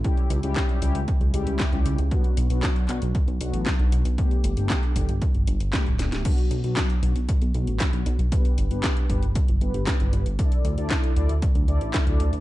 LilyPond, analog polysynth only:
\new Staff \with { instrumentName = "Analog polysynth" } { \time 4/4 \key b \minor \tempo 4 = 116 <g cis' e' g'>8. <g cis' e' g'>8. <g cis' e' g'>16 r8. <g cis' e' g'>8. <g cis' e' g'>8 r16 | <fis b d' fis'>8. <fis b d' fis'>8. <fis b d' fis'>16 r8. <fis b d' fis'>8. <fis b d' fis'>8 r16 | <a b d' g'>8. <a b d' g'>8. <a b d' g'>16 r4 r16 <a b d' g'>16 r16 <a b d' g'>16 <a b d' g'>16 | <fis b d' fis'>8. <fis b d' fis'>8. <fis b d' fis'>16 r8. <fis b d' fis'>8. <fis b d' fis'>8 r16 |
<b d' g' b'>8. <b d' g' b'>8. <b d' g' b'>16 r8. <b d' g' b'>8. <b d' g' b'>8 r16 | <d' e' a' d''>8. <d' e' a' d''>8. <d' e' a' d''>16 r8. <d' e' a' d''>8. <d' e' a' d''>8 r16 | }